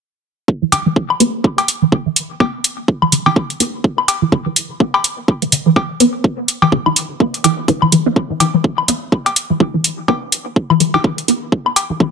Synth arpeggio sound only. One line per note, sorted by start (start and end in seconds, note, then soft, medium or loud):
0.62 0.66 E3 medium
0.72 0.78 D3 medium
0.86 0.90 E3 medium
1.20 1.24 B3 loud
1.82 1.86 E3 medium
1.92 1.98 D3 medium
2.06 2.10 E3 medium
2.40 2.44 B3 medium
3.02 3.06 E3 medium
3.12 3.18 D3 medium
3.26 3.30 E3 medium
3.60 3.64 B3 medium
4.22 4.26 E3 medium
4.32 4.38 D3 medium
4.46 4.50 E3 medium
4.80 4.84 B3 loud
5.42 5.46 E3 medium
5.52 5.58 D3 medium
5.66 5.70 E3 medium
6.00 6.04 B3 medium
6.62 6.66 E3 medium
6.72 6.78 D3 medium
6.86 6.90 E3 medium
7.20 7.24 B3 medium
7.44 7.50 E3 medium
7.68 7.72 E3 medium
7.82 7.85 E3 medium
7.92 7.95 E3 medium
8.06 8.08 B3 medium
8.30 8.34 E3 medium
8.40 8.43 E3 medium
8.54 8.58 E3 medium
8.88 8.92 B3 loud
9.50 9.54 E3 medium
9.60 9.63 E3 medium
9.74 9.78 E3 medium
10.08 10.12 B3 loud
10.70 10.74 E3 medium
10.80 10.82 E3 medium
10.94 10.98 E3 medium
11.28 11.32 B3 medium
11.90 11.94 E3 medium
12.00 12.03 E3 medium